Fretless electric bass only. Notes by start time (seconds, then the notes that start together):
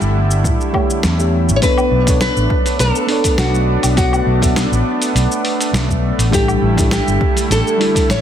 0.01 G1
0.44 A2
1.04 E2
1.49 A1
1.91 B1
2.36 A1
2.79 B1
3.38 B1
3.84 B1
4.27 B1
4.72 A1
5.15 B1
5.73 B1
6.18 A1
6.62 A1
7.08 G1
7.50 A1
8.09 A1